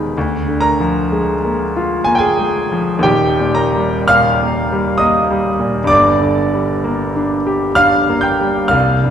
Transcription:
0.00 0.11 D#1 medium
0.00 0.12 D#2 medium
0.00 0.16 D#3 medium
0.00 0.18 G#3 medium
0.00 0.18 B3 medium
0.00 0.18 D#4 medium
0.00 0.18 A#4 medium
0.00 0.18 B4 medium
0.00 0.19 A#5 loud
0.00 0.18 B5 medium
0.18 3.01 D2 medium
0.48 1.00 D3 medium
0.60 2.04 A#4 medium
0.60 2.07 A#5 loud
0.80 1.32 F3 medium
1.12 1.64 G#3 medium
1.45 1.96 A#3 medium
1.77 2.28 F4 medium
2.05 2.59 A#3 medium
2.05 2.14 G#5 loud
2.15 2.23 G5 medium
2.15 3.03 G#5 medium
2.20 2.99 G#4 medium
2.39 2.91 G#3 medium
2.72 3.04 F3 medium
2.99 5.84 D#2 medium
3.03 5.86 D#1 medium
3.03 3.51 G4 medium
3.03 3.54 G5 loud
3.40 3.94 A#2 medium
3.55 4.03 A#4 medium
3.55 4.06 A#5 loud
3.76 4.28 G3 medium
4.08 4.59 A#2 medium
4.08 4.98 F5 medium
4.08 5.01 F6 loud
4.43 4.90 A#3 medium
4.72 5.20 G3 medium
4.98 5.48 A#3 medium
4.98 5.86 D#5 medium
4.98 5.89 D#6 loud
5.30 5.79 G3 medium
5.60 5.90 A#2 medium
5.84 8.66 G2 medium
5.84 7.79 D6 loud
5.88 8.69 G1 medium
5.88 7.76 D5 medium
6.21 6.72 D3 medium
6.54 7.05 G3 medium
6.84 7.36 A#3 medium
7.16 7.67 D4 medium
7.47 7.98 G4 medium
7.75 8.29 D4 medium
7.75 8.21 F5 medium
7.75 8.24 F6 loud
8.09 8.60 A#3 medium
8.21 8.68 G5 medium
8.21 8.71 G6 medium
8.41 8.73 G3 medium
8.68 9.10 C2 medium
8.68 9.10 F5 medium
8.68 9.10 F6 loud
9.04 9.10 G2 medium

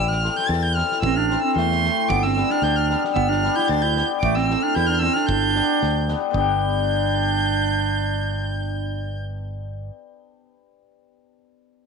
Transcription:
0.00 0.27 A1 loud
0.08 0.38 F6 medium
0.08 snare soft
0.22 0.43 C4 medium
0.22 0.44 E4 medium
0.22 0.44 A4 medium
0.22 0.44 C5 medium
0.22 snare soft
0.36 0.50 G6 loud
0.36 snare soft
0.49 0.81 E2 loud
0.49 0.59 A6 loud
0.49 snare soft
0.59 0.77 G6 loud
0.59 0.64 A6 medium
0.75 0.97 C4 medium
0.75 0.97 E4 medium
0.75 0.97 A4 medium
0.75 0.97 C5 medium
0.75 1.01 F6 loud
0.75 snare soft
0.92 snare soft
1.02 1.35 A1 loud
1.02 1.18 C4 medium
1.02 1.17 E6 medium
1.02 kick medium
1.15 1.44 D4 medium
1.15 1.41 F6 medium
1.29 1.51 C4 medium
1.29 1.51 E4 medium
1.29 1.51 A4 medium
1.29 1.52 C5 medium
1.29 snare soft
1.42 1.56 C4 medium
1.42 1.55 E6 medium
1.56 1.88 E2 loud
1.56 2.12 A3 medium
1.56 2.10 C6 loud
1.56 snare soft
1.71 snare soft
1.83 2.04 C4 medium
1.83 2.04 E4 medium
1.83 2.05 A4 medium
1.83 2.05 C5 medium
1.83 snare soft
2.08 2.42 G1 loud
2.08 2.26 B3 medium
2.08 2.25 D6 loud
2.08 kick medium
2.23 2.52 C4 medium
2.23 2.52 E6 medium
2.23 snare soft
2.36 2.57 B3 medium
2.36 2.58 D4 medium
2.36 2.58 G4 medium
2.36 2.58 B4 medium
2.36 snare soft
2.50 2.62 D4 medium
2.50 2.64 F6 medium
2.50 snare soft
2.62 2.94 D2 loud
2.62 2.76 D4 medium
2.62 2.77 G6 loud
2.62 snare soft
2.76 3.03 D4 medium
2.76 3.03 F6 medium
2.90 3.11 B3 medium
2.90 3.11 D4 medium
2.90 3.11 G4 medium
2.90 3.12 B4 medium
2.90 snare soft
3.04 snare soft
3.14 3.48 G1 loud
3.14 3.31 B3 medium
3.14 3.30 E6 medium
3.14 kick medium
3.28 3.58 D4 medium
3.28 3.57 F6 medium
3.28 snare soft
3.43 3.64 B3 medium
3.43 3.64 D4 medium
3.43 3.64 G4 medium
3.43 3.65 B4 medium
3.43 snare soft
3.56 3.71 E4 medium
3.56 3.70 G6 loud
3.56 snare soft
3.68 4.01 D2 loud
3.68 3.85 D4 medium
3.68 3.83 A6 loud
3.68 snare soft
3.82 4.10 E4 medium
3.82 4.09 G6 loud
3.96 4.17 B3 medium
3.96 4.17 D4 medium
3.96 4.17 G4 medium
3.96 4.18 B4 medium
3.96 snare soft
4.20 4.54 A1 loud
4.20 4.38 A3 medium
4.20 4.37 D6 medium
4.20 kick medium
4.35 4.65 C4 medium
4.35 4.64 E6 medium
4.35 snare soft
4.49 4.70 C4 medium
4.49 4.70 E4 medium
4.49 4.70 A4 medium
4.49 4.71 C5 medium
4.49 snare soft
4.62 4.78 D4 medium
4.62 4.76 F6 medium
4.75 5.08 E2 loud
4.75 4.91 E4 medium
4.75 4.88 G6 loud
4.75 snare soft
4.87 4.95 D4 medium
4.87 4.91 F6 loud
4.87 4.95 G6 medium
4.93 5.04 D4 medium
4.93 4.98 E4 medium
4.93 5.01 F6 loud
4.99 5.23 C4 medium
4.99 5.18 C4 medium
4.99 5.23 E4 medium
4.99 5.15 E6 loud
4.99 snare soft
5.03 5.23 A4 medium
5.03 5.24 C5 medium
5.13 5.30 D4 medium
5.13 5.28 F6 medium
5.13 snare soft
5.27 5.60 G1 loud
5.27 6.08 D4 loud
5.27 6.06 G6 loud
5.27 kick medium
5.55 5.76 B3 medium
5.55 5.76 D4 medium
5.55 5.76 G4 medium
5.55 5.76 B4 medium
5.55 snare soft
5.82 6.14 D2 loud
5.82 snare soft
6.08 6.28 B3 medium
6.08 6.29 D4 medium
6.08 6.29 G4 medium
6.08 6.29 B4 medium
6.08 snare soft
6.31 9.89 G1 loud
6.31 10.45 B3 loud
6.31 10.06 D4 medium
6.31 9.19 D4 medium
6.31 9.19 G6 medium
6.31 kick medium
6.36 9.90 G4 medium
6.36 9.91 B4 loud

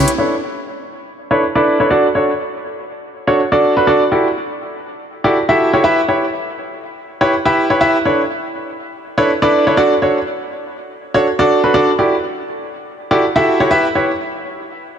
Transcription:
0.08 closed hi-hat medium
0.18 0.34 D4 medium
0.18 0.34 E4 medium
0.18 0.34 A4 medium
0.18 0.34 B4 medium
0.18 0.34 C#5 medium
1.31 1.43 D4 medium
1.31 1.43 E4 medium
1.31 1.43 A4 medium
1.31 1.43 B4 medium
1.31 1.43 C#5 medium
1.55 1.77 D4 medium
1.55 1.77 E4 medium
1.55 1.77 A4 medium
1.55 1.77 B4 medium
1.55 1.77 D5 loud
1.80 1.89 D4 medium
1.80 1.89 E4 medium
1.80 1.89 A4 medium
1.80 1.89 B4 medium
1.80 1.89 C#5 medium
1.90 2.06 D4 medium
1.90 2.06 F#4 medium
1.90 2.06 A4 medium
1.90 2.06 D5 loud
2.15 2.30 D4 medium
2.15 2.30 F#4 medium
2.15 2.30 A4 medium
2.15 2.30 C#5 medium
3.27 3.40 D4 medium
3.27 3.40 F#4 medium
3.27 3.40 A4 medium
3.27 3.40 C#5 medium
3.52 3.73 D4 medium
3.52 3.73 F#4 medium
3.52 3.73 A4 medium
3.52 3.73 D5 loud
3.77 3.86 D4 medium
3.77 3.86 F#4 medium
3.77 3.86 A4 medium
3.77 3.86 B4 medium
3.87 4.02 D4 medium
3.87 4.02 F#4 medium
3.87 4.02 A4 medium
3.87 4.02 D5 loud
4.12 4.27 E4 medium
4.12 4.27 F#4 medium
4.12 4.27 G4 medium
4.12 4.27 A4 medium
4.12 4.27 D5 medium
5.24 5.36 E4 medium
5.24 5.36 F#4 medium
5.24 5.36 G4 medium
5.24 5.36 A4 medium
5.24 5.36 D5 medium
5.49 5.70 E4 medium
5.49 5.70 F#4 medium
5.49 5.70 G4 medium
5.49 5.70 A4 medium
5.49 5.70 E5 loud
5.73 5.82 E4 medium
5.73 5.82 F#4 medium
5.73 5.82 G4 medium
5.73 5.82 A4 medium
5.73 5.82 C#5 medium
5.84 5.99 E4 loud
5.84 5.99 G4 medium
5.84 5.99 B4 medium
5.84 5.99 E5 loud
6.08 6.24 E4 medium
6.08 6.24 G4 medium
6.08 6.24 B4 medium
6.08 6.24 C#5 medium
7.21 7.33 E4 medium
7.21 7.33 G4 medium
7.21 7.33 B4 medium
7.21 7.33 C#5 medium
7.45 7.67 E4 medium
7.45 7.67 G4 medium
7.45 7.67 B4 medium
7.45 7.67 E5 loud
7.70 7.79 E4 medium
7.70 7.79 G4 medium
7.70 7.79 B4 medium
7.70 7.79 C#5 medium
7.81 7.96 E4 medium
7.81 7.96 G4 medium
7.81 7.96 B4 medium
7.81 7.96 E5 loud
8.05 8.21 D4 medium
8.05 8.21 E4 medium
8.05 8.21 A4 medium
8.05 8.21 B4 medium
8.05 8.21 C#5 medium
9.18 9.30 D4 medium
9.18 9.30 E4 medium
9.18 9.30 A4 medium
9.18 9.30 B4 medium
9.18 9.30 C#5 loud
9.42 9.63 D4 medium
9.42 9.63 E4 medium
9.42 9.63 A4 medium
9.42 9.63 B4 medium
9.42 9.63 D5 loud
9.67 9.76 D4 medium
9.67 9.76 E4 medium
9.67 9.76 A4 medium
9.67 9.76 B4 medium
9.67 9.76 C#5 medium
9.77 9.93 D4 medium
9.77 9.93 F#4 medium
9.77 9.93 A4 medium
9.77 9.93 D5 loud
10.02 10.17 D4 medium
10.02 10.17 F#4 medium
10.02 10.17 A4 medium
10.02 10.17 C#5 medium
11.14 11.27 D4 medium
11.14 11.27 F#4 medium
11.14 11.26 A4 medium
11.14 11.27 C#5 medium
11.39 11.60 D4 medium
11.39 11.60 F#4 medium
11.39 11.60 A4 medium
11.39 11.60 D5 loud
11.64 11.72 D4 medium
11.64 11.73 F#4 medium
11.64 11.72 A4 medium
11.64 11.73 B4 medium
11.74 11.89 D4 loud
11.74 11.89 F#4 medium
11.74 11.89 A4 medium
11.74 11.89 D5 loud
11.99 12.14 E4 medium
11.99 12.14 F#4 medium
11.99 12.14 G4 medium
11.99 12.14 A4 medium
11.99 12.14 D5 medium
13.11 13.23 E4 medium
13.11 13.23 F#4 medium
13.11 13.23 G4 medium
13.11 13.23 A4 medium
13.11 13.23 D5 medium
13.36 13.57 E4 medium
13.36 13.57 F#4 medium
13.36 13.57 G4 medium
13.36 13.57 A4 medium
13.36 13.57 E5 loud
13.60 13.69 E4 medium
13.60 13.69 F#4 medium
13.60 13.69 G4 medium
13.60 13.69 A4 medium
13.60 13.69 C#5 medium
13.71 13.86 E4 loud
13.71 13.86 G4 medium
13.71 13.86 B4 medium
13.71 13.86 E5 loud
13.95 14.11 E4 medium
13.95 14.11 G4 medium
13.95 14.11 B4 medium
13.95 14.11 C#5 medium

